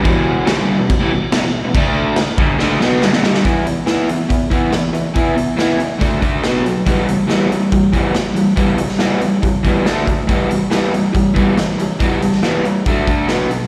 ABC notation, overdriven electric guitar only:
X:1
M:4/4
L:1/16
Q:1/4=140
K:Em
V:1 name="Overdriven electric guitar" clef=bass
[E,,B,,E,]4 [G,,D,G,]3 [E,,B,,] [E,,B,,] [A,,E,] [E,,B,,]2 [E,,B,,] [E,,B,,]2 [E,,B,,] | [D,A,D]4 z2 [G,,D,G,]2 [D,A,D]2 [B,,F,B,]2 [G,,D,] [E,,B,,] [G,,D,G,]2 | [E,B,E]2 [E,B,]2 [E,B,E]2 [E,B,]2 [E,B,]2 [E,B,E]2 [E,B,]2 [E,B,]2 | [E,B,E]2 [E,B,]2 [E,B,E]2 [E,B,]2 [D,A,D]2 [D,A,D]2 [B,,F,B,]2 [B,,F,]2 |
[E,G,B,]2 [E,G,]2 [E,G,B,]2 [E,G,]2 [E,G,]2 [E,G,B,]2 [E,G,]2 [E,G,]2 | [E,G,B,]2 [E,G,]2 [E,G,B,]2 [E,G,]2 [E,G,]2 [E,G,B,]2 [D,A,D]2 [D,A,]2 | [E,G,B,]2 [E,G,]2 [E,G,B,]2 [E,G,]2 [E,G,]2 [E,G,B,]2 [E,G,]2 [E,G,]2 | [E,G,B,]2 [E,G,]2 [E,G,B,]2 [E,G,]2 [D,A,D]2 [D,A,D]2 [B,,F,B,]2 [B,,F,]2 |]